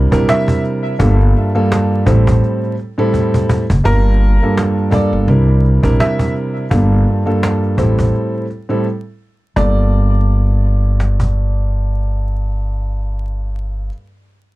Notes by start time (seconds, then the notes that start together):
0.11 A#1 C3 G3 D4 E4 A#4, cajon bass, cajon slap
0.29 E5, cajon slap
0.48 cajon bass
0.64 cajon slap
0.85 cajon slap
0.99 G1 G2 G3 A#3 F4 A4, cajon bass
1.20 cajon slap
1.36 cajon slap
1.54 G2 G3 A#3 F4 A4, cajon slap
1.72 cajon slap
1.92 cajon slap
2.06 A1 A2 G3 C4 E4 A4, cajon bass, cajon slap
2.27 cajon bass
2.43 cajon slap
2.64 cajon slap
2.79 cajon slap
2.98 A2 G3 C4 E4 A4, cajon slap
3.14 cajon bass, cajon slap
3.34 cajon bass
3.49 cajon bass
3.70 F#1, cajon bass
3.84 G1 G2 G3 A#3 F4 A#4, cajon bass
4.22 cajon slap
4.42 G2 G3 A#3 F4 A4, cajon slap
4.57 cajon slap
4.78 cajon slap
4.90 G2 G3 A#3 F4 A4 D5, cajon bass
5.13 G1, cajon slap
5.28 C2 C3 G3 D4 E4 A#4, cajon slap
5.49 cajon slap
5.65 cajon slap
5.83 A#1 C3 G3 D4 E4 A#4, cajon bass, cajon slap
6.00 E5, cajon slap
6.19 cajon bass
6.36 cajon slap
6.57 cajon slap
6.70 G1 G2 G3 A#3 F4 A4, cajon bass
6.92 cajon slap
7.08 cajon slap
7.25 G2 G3 A#3 F4 A4, cajon slap
7.43 cajon slap
7.63 cajon slap
7.77 A1 A2 G3 C4 E4 A4, cajon bass, cajon slap
7.99 cajon bass
8.14 cajon slap
8.35 cajon slap
8.50 cajon slap
8.69 A2 G3 C4 E4 A4, cajon slap
9.56 G1 G2 G3 A#3 F4 A4 D5, cajon bass, cajon slap
11.00 cajon slap
11.20 cajon bass